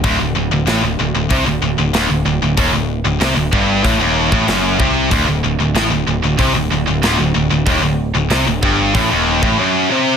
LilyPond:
<<
  \new Staff \with { instrumentName = "Distorted electric guitar" } { \clef bass \time 4/4 \tempo 4 = 94 d,16 d,16 d,16 d,16 a,16 d,16 d,16 d,16 c16 d,16 d,16 d,16 d,16 d,16 d,16 d,16 | ees,16 d,8 d,16 c16 d,16 g,8 a,16 ees,8 a,16 fis,8 c8 | d,16 d,16 d,16 d,16 a,16 d,16 d,16 d,16 c16 d,16 d,16 d,16 d,16 d,16 d,16 d,16 | ees,16 d,8 d,16 c16 d,16 g,8 a,16 ees,8 a,16 fis,8 c8 | }
  \new Staff \with { instrumentName = "Distorted electric guitar" } { \clef bass \time 4/4 d,16 d,16 d,16 d,16 a,16 d,16 d,16 d,16 c16 d,16 d,16 d,16 d,16 d,16 d,16 d,16 | ees,16 d,8 d,16 c16 d,16 g,8 a,16 ees,8 a,16 fis,8 c8 | d,16 d,16 d,16 d,16 a,16 d,16 d,16 d,16 c16 d,16 d,16 d,16 d,16 d,16 d,16 d,16 | ees,16 d,8 d,16 c16 d,16 g,8 a,16 ees,8 a,16 fis,8 c8 | }
  \new Staff \with { instrumentName = "Picked electric bass" } { \clef bass \time 4/4 d,,16 d,,16 d,,16 d,,16 a,,16 d,,16 d,,16 d,,16 c,16 d,,16 d,,16 d,,16 d,,16 d,,16 d,,16 d,,16 | ees,,16 d,,8 d,,16 c,16 d,,16 g,,8 a,,16 ees,,8 a,,16 fis,,8 c,8 | d,,16 d,,16 d,,16 d,,16 a,,16 d,,16 d,,16 d,,16 c,16 d,,16 d,,16 d,,16 d,,16 d,,16 d,,16 d,,16 | ees,,16 d,,8 d,,16 c,16 d,,16 g,,8 a,,16 ees,,8 a,,16 r4 | }
  \new DrumStaff \with { instrumentName = "Drums" } \drummode { \time 4/4 <hho bd>4 <hho sn>4 <hho bd>4 <hho sn>4 | <hho bd>4 <hho sn>8 bd8 <hho bd>8. bd16 <hho sn>8 bd8 | <hho bd>4 <hho sn>4 <hho bd>4 <hho sn>4 | <hho bd>4 <hho sn>8 bd8 <hho bd>8. bd16 r4 | }
>>